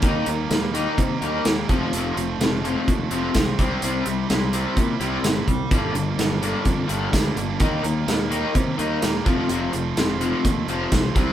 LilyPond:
<<
  \new Staff \with { instrumentName = "Distorted electric guitar" } { \time 4/4 \key f \mixolydian \tempo 4 = 127 <ees g bes ees'>4. <ees g bes ees'>4. <ees g bes ees'>8 <f a c' f'>8~ | <f a c' f'>4 <f a c' f'>4. <f a c' f'>4 <c g c' e'>8~ | <c g c' e'>4 <c g c' e'>4. <c g c' e'>4 r8 | <g, d g bes d'>4. <g, d g bes d'>4. <g, d g bes d'>4 |
<ees g bes ees'>4. <ees g bes ees'>4. <ees g bes ees'>8 <f a c' f'>8~ | <f a c' f'>4 <f a c' f'>4. <f a c' f'>4 <c e g c' e'>8 | }
  \new Staff \with { instrumentName = "Overdriven electric guitar" } { \clef bass \time 4/4 \key f \mixolydian <ees bes ees'>8 <ees bes>8 <ees bes>8 <ees bes ees'>8 <ees bes>8 <ees bes ees'>8 <ees bes>8 <f, c f>8 | <f, c f>8 <f, c>8 <f, c>8 <f, c f>8 <f, c>8 <f, c f>8 <f, c>8 <c g c'>8 | <c g c'>8 <c g>8 <c g>8 <c g c'>8 <c g>8 <c g c'>8 <c g>8 <c g>8 | <g, d g>8 <g, d>8 <g, d>8 <g, d g>8 <g, d>8 <g, d g>8 <g, d>8 <g, d>8 |
<ees bes ees'>8 <ees bes>8 <ees bes>8 <ees bes ees'>8 <ees bes>8 <ees bes ees'>8 <ees bes>8 <f, c f>8 | <f, c f>8 <f, c>8 <f, c>8 <f, c f>8 <f, c>8 <f, c f>8 <f, c>8 <c g c'>8 | }
  \new Staff \with { instrumentName = "Picked electric bass" } { \clef bass \time 4/4 \key f \mixolydian ees,8 ees,8 ees,4 c8 ees,8 ees,8 f,,8 | f,,8 f,,8 f,,4 ees,8 f,,8 c,8 c,8 | c,8 c,8 c,4 bes,8 c,8 g,,8 c,8 | g,,8 g,,8 g,,4 f,8 g,,8 d,8 g,,8 |
ees,8 ees,8 ees,4 c8 ees,8 ees,8 f,,8 | f,,8 f,,8 f,,4 ees,8 f,,8 c,8 c,8 | }
  \new DrumStaff \with { instrumentName = "Drums" } \drummode { \time 4/4 <hh bd>8 hh8 <hh sn tamb>8 hh8 <hh bd>8 hh8 <hh sn tamb>8 <hh bd>8 | hh8 hh8 <hh sn tamb>8 hh8 <hh bd>8 hh8 <hh bd sn tamb>8 <hh bd>8 | hh8 hh8 <hh sn tamb>8 hh8 <hh bd>8 hh8 <hh sn tamb>8 <hh bd>8 | <hh bd>8 hh8 <hh sn tamb>8 hh8 <hh bd>8 hh8 <hh bd sn tamb>8 hh8 |
<hh bd>8 hh8 <hh sn tamb>8 hh8 <hh bd>8 hh8 <hh sn tamb>8 <hh bd>8 | hh8 hh8 <hh sn tamb>8 hh8 <hh bd>8 hh8 <hh bd sn tamb>8 <hh bd>8 | }
>>